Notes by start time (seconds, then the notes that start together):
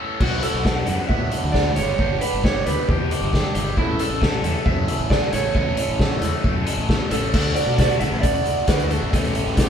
Already playing: E3 A4
0.00 A3 C#4
0.19 B1 F#3 B3 D4 F#4, kick, crash
0.42 B3 D4 F#4 A4, closed hi-hat
0.54 B1
0.63 F#3 B3 D4 F#4, kick, snare
0.86 F#2 B3 D4 F#4, closed hi-hat
1.09 A2 F#3 B3 D4 F#4 E5, kick
1.31 B3 D4 F#4, closed hi-hat
1.44 D2
1.52 D5, kick, snare
1.76 G1 B3 D4 G4 C#5, closed hi-hat
1.98 G1 B3 D4 G4, kick
2.21 D4 G4 B4, closed hi-hat
2.33 G1
2.44 B3 D4 G4 C#5, kick, snare
2.66 D2 D4 G4 B4, closed hi-hat
2.88 E2 B3 D4 G4, kick
3.11 D4 G4, closed hi-hat
3.21 G1
3.33 kick, snare
3.54 G1 D4 G4, closed hi-hat
3.77 A1 E3 A3 C#4 E4 A4, kick
3.99 A3 C#4 A4, closed hi-hat
4.09 A1
4.21 E3 A3 C#4 A4, kick, snare
4.43 E2 A3 C#4 A4, closed hi-hat
4.65 F#2 E3 A3 C#4 A4 E5, kick
4.88 A3 C#4 A4, closed hi-hat
4.99 A1
5.10 D5, kick, snare
5.33 A1 A3 C#4 A4 C#5, closed hi-hat
5.55 A1 E3 A3 C#4 A4, kick
5.77 A3 C#4 A4, closed hi-hat
5.88 A1
6.00 E3 A3 C#4 A4, kick, snare
6.21 E2 A3 C#4 A4, closed hi-hat
6.44 F#2 E3 A3 C#4 A4, kick
6.66 A3 C#4 A4, closed hi-hat
6.77 A1
6.89 kick, snare
7.10 A1 A3 C#4 A4, closed hi-hat
7.33 D2 A3 D4 F#4 A4, kick, crash
7.55 D5, closed hi-hat
7.67 B2
7.78 A3 D4 F#4 D5, kick, snare, closed hi-hat
7.90 closed hi-hat
8.00 A1 D4 F#4 E5, closed hi-hat
8.12 A1
8.21 A3 D4 F#4 D5, kick, closed hi-hat
8.35 closed hi-hat
8.45 closed hi-hat
8.67 D2 A3 D4 F#4 B4, kick, snare, closed hi-hat
8.79 closed hi-hat
8.89 D4 F#4 A4, closed hi-hat
9.02 A1
9.13 A1 E3 A3 C#4 G4, kick, closed hi-hat
9.24 closed hi-hat
9.35 closed hi-hat
9.46 A1, snare
9.57 E3 A3 C#4 G4, kick, snare, closed hi-hat